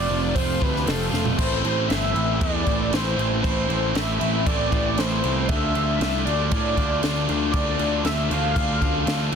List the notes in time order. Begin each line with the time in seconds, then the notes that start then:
Already playing: D5
0.08 F1 F2 C3 F3 A3 C4 F4
0.34 F1 F3 A3 C4 F4 C5, kick, open hi-hat
0.60 D2 F2 C3 F3 A3 C4 F4 B4, kick
0.76 snare
0.85 F1 F3 A3 C4 F4 A4, snare, open hi-hat
1.11 F1 F3 A3 C4 F4, snare
1.25 floor tom
1.38 A1 A2 E3 A3 C4 E4 C5, kick, crash
1.64 A1 A2 E3 A3 C4 E4, crash
1.88 G1 A2 E3 A3 C4 E4 E5, snare, crash
2.13 A1 A2 E3 A3 C4 E4, crash
2.40 E2 A2 E3 A3 C4 E4 D5, kick, crash
2.66 A1 A2 E3 A3 C4 E4, kick, crash
2.92 A2 E3 A3 C4 E4 C5, snare, crash
3.17 A1 A2 E3 A3 C4 E4, crash
3.42 A1 A2 E3 A3 C4 E4 C5, kick, crash
3.67 A1 A2 E3 A3 C4 E4, crash
3.93 A1 A2 E3 A3 C4 E4 E5, snare, crash
4.19 A1 A2 E3 A3 C4 E4, crash
4.46 A1 A2 E3 A3 C4 E4 D5, kick, crash
4.71 A1 A2 E3 A3 C4 E4, kick, crash
4.97 A1 A2 E3 A3 C4 E4 C5, snare, crash
5.23 C2 A2 E3 A3 C4 E4, crash
5.48 D2 D3 A3 D4 F4 E5, kick, crash
5.75 D2 D3 A3 D4 F4, crash
6.00 C2 D3 A3 D4 F4, snare, crash
6.25 D2 D3 A3 D4 F4 D5, crash
6.51 A2 D3 A3 D4 F4 D5, kick, crash
6.77 D2 D3 A3 D4 F4, kick, crash
7.03 D2 D3 A3 D4 F4, snare, crash
7.28 D2 D3 A3 D4 F4, crash
7.51 D2 D3 A3 D4 F4 D5, kick, crash
7.78 D2 D3 A3 D4 F4, crash
8.05 D2 D3 A3 D4 F4 E5, snare, crash
8.24 E5
8.30 D2 D3 A3 D4 F4 F5, crash
8.56 D2 D3 A3 D4 F4, kick, crash
8.81 D2 D3 A3 D4 F4, kick, crash
9.06 D2 D3 A3 D4 F4, snare, crash
9.32 D2 D3